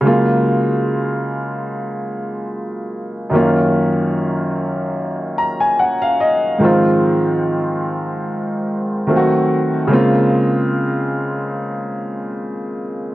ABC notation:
X:1
M:4/4
L:1/16
Q:"Swing 16ths" 1/4=73
K:Gblyd
V:1 name="Grand piano"
z16 | z8 z2 b a g f e2 | z16 | z16 |]
V:2 name="Grand piano" clef=bass
[D,G,A,B,F]16 | [G,,E,G,B,DF]16 | [A,,E,F,A,CF]12 [E,^F,=A,C=F^F]4 | [D,A,B,CF]16 |]